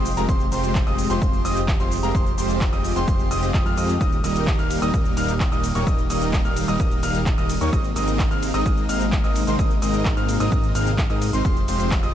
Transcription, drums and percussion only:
0.05 open hi-hat, shaker
0.17 closed hi-hat, shaker
0.29 kick, closed hi-hat, shaker
0.40 closed hi-hat, shaker
0.52 open hi-hat, shaker
0.64 closed hi-hat, shaker
0.75 kick, clap, closed hi-hat, shaker
0.87 closed hi-hat, shaker
0.98 open hi-hat, shaker
1.10 closed hi-hat, shaker
1.22 kick, closed hi-hat, shaker
1.33 closed hi-hat, shaker
1.45 open hi-hat, shaker
1.57 closed hi-hat, shaker
1.68 kick, clap, closed hi-hat, shaker
1.80 closed hi-hat, shaker
1.92 open hi-hat, shaker
2.03 closed hi-hat, shaker
2.15 kick, closed hi-hat, shaker
2.26 closed hi-hat, shaker
2.38 open hi-hat, shaker
2.50 closed hi-hat, shaker
2.61 kick, clap, closed hi-hat, shaker
2.73 closed hi-hat, shaker
2.85 open hi-hat, shaker
2.96 closed hi-hat, shaker
3.08 kick, closed hi-hat, shaker
3.19 closed hi-hat, shaker
3.31 open hi-hat, shaker
3.43 closed hi-hat, shaker
3.54 kick, clap, closed hi-hat, shaker
3.66 closed hi-hat, shaker
3.77 open hi-hat, shaker
3.89 closed hi-hat, shaker
4.01 kick, closed hi-hat, shaker
4.12 closed hi-hat, shaker
4.24 open hi-hat, ride, shaker
4.36 closed hi-hat, shaker
4.47 kick, clap, closed hi-hat, shaker
4.59 closed hi-hat, shaker
4.71 open hi-hat, ride, shaker
4.82 closed hi-hat, shaker
4.94 kick, closed hi-hat, shaker
5.05 closed hi-hat, shaker
5.17 open hi-hat, ride, shaker
5.29 closed hi-hat, shaker
5.40 kick, clap, closed hi-hat, shaker
5.52 closed hi-hat, shaker
5.64 open hi-hat, ride, shaker
5.75 closed hi-hat, shaker
5.87 kick, closed hi-hat, shaker
5.98 closed hi-hat, shaker
6.10 open hi-hat, ride, shaker
6.22 closed hi-hat, shaker
6.33 kick, clap, closed hi-hat, shaker
6.45 closed hi-hat, shaker
6.57 open hi-hat, ride, shaker
6.68 closed hi-hat, shaker
6.80 kick, closed hi-hat, shaker
6.91 closed hi-hat, shaker
7.03 open hi-hat, ride, shaker
7.15 closed hi-hat, shaker
7.26 kick, clap, closed hi-hat, shaker
7.38 closed hi-hat, shaker
7.50 open hi-hat, ride, shaker
7.61 closed hi-hat, shaker
7.73 kick, closed hi-hat, shaker
7.84 closed hi-hat, shaker
7.96 open hi-hat, ride, shaker
8.08 closed hi-hat, shaker
8.19 kick, clap, closed hi-hat, shaker
8.31 closed hi-hat, shaker
8.43 open hi-hat, ride, shaker
8.54 closed hi-hat, shaker
8.66 kick, closed hi-hat, shaker
8.78 closed hi-hat, shaker
8.89 open hi-hat, ride, shaker
9.01 closed hi-hat, shaker
9.12 kick, clap, closed hi-hat, shaker
9.24 closed hi-hat, shaker
9.36 open hi-hat, ride, shaker
9.47 closed hi-hat, shaker
9.59 kick, closed hi-hat, shaker
9.71 closed hi-hat, shaker
9.82 open hi-hat, ride, shaker
9.94 closed hi-hat, shaker
10.05 kick, clap, closed hi-hat, shaker
10.17 closed hi-hat, shaker
10.29 open hi-hat, ride, shaker
10.40 closed hi-hat, shaker
10.52 kick, closed hi-hat, shaker
10.64 closed hi-hat, shaker
10.75 open hi-hat, ride, shaker
10.87 closed hi-hat, shaker
10.98 kick, clap, closed hi-hat, shaker
11.10 closed hi-hat, shaker
11.22 open hi-hat, ride, shaker
11.33 closed hi-hat, shaker
11.45 kick, closed hi-hat, shaker
11.57 closed hi-hat, shaker
11.68 open hi-hat, ride, shaker
11.80 closed hi-hat, shaker
11.91 kick, clap, closed hi-hat, shaker
12.03 closed hi-hat, shaker

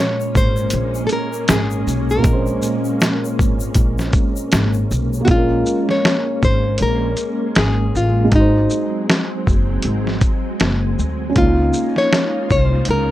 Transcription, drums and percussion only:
0.21 shaker
0.35 kick, shaker
0.57 shaker
0.70 closed hi-hat, shaker
0.95 shaker
1.09 closed hi-hat, shaker
1.33 shaker
1.48 snare, closed hi-hat, shaker
1.71 shaker
1.88 shaker
2.10 shaker
2.24 kick, closed hi-hat, shaker
2.46 shaker
2.62 shaker
2.85 shaker
3.01 snare, closed hi-hat, shaker
3.25 shaker
3.39 kick, shaker
3.60 shaker
3.74 kick, closed hi-hat, shaker
3.98 snare, shaker
4.13 kick, closed hi-hat, shaker
4.36 shaker
4.52 snare, closed hi-hat, shaker
4.74 shaker
4.91 shaker
5.13 shaker
5.28 kick, closed hi-hat
5.66 shaker
5.89 snare
6.05 snare, closed hi-hat
6.43 kick, shaker
6.78 closed hi-hat
7.17 closed hi-hat, shaker
7.55 snare, closed hi-hat
7.95 shaker
8.32 kick, closed hi-hat
8.70 shaker
9.10 snare, closed hi-hat
9.47 kick, shaker
9.82 closed hi-hat
10.07 snare
10.21 kick, closed hi-hat, shaker
10.60 snare, closed hi-hat
10.99 shaker
11.36 kick, closed hi-hat
11.73 shaker
11.96 snare
12.13 snare, closed hi-hat
12.50 kick, shaker
12.85 closed hi-hat

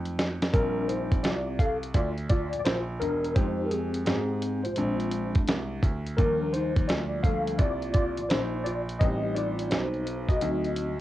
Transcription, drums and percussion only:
0.05 closed hi-hat
0.19 snare, closed hi-hat
0.42 snare, closed hi-hat
0.54 kick, closed hi-hat
0.89 closed hi-hat
1.12 kick, closed hi-hat
1.24 snare, closed hi-hat
1.59 kick, closed hi-hat
1.83 closed hi-hat
1.94 kick, closed hi-hat
2.18 closed hi-hat
2.29 kick, closed hi-hat
2.53 closed hi-hat
2.65 snare, closed hi-hat
3.02 closed hi-hat
3.24 closed hi-hat
3.36 kick, closed hi-hat
3.71 closed hi-hat
3.94 closed hi-hat
4.06 snare, closed hi-hat
4.42 closed hi-hat
4.65 closed hi-hat
4.76 closed hi-hat
5.00 closed hi-hat
5.11 closed hi-hat
5.35 kick, closed hi-hat
5.47 snare, closed hi-hat
5.83 kick, closed hi-hat
6.07 closed hi-hat
6.18 kick, closed hi-hat
6.54 closed hi-hat
6.76 kick, closed hi-hat
6.89 snare, closed hi-hat
7.24 kick, closed hi-hat
7.47 closed hi-hat
7.59 kick, closed hi-hat
7.82 closed hi-hat
7.94 kick, closed hi-hat
8.17 closed hi-hat
8.30 snare, closed hi-hat
8.66 closed hi-hat
8.89 closed hi-hat
9.01 kick, closed hi-hat
9.36 closed hi-hat
9.59 closed hi-hat
9.71 snare, closed hi-hat
9.94 closed hi-hat
10.07 closed hi-hat
10.29 kick, closed hi-hat
10.41 closed hi-hat
10.64 closed hi-hat
10.76 closed hi-hat

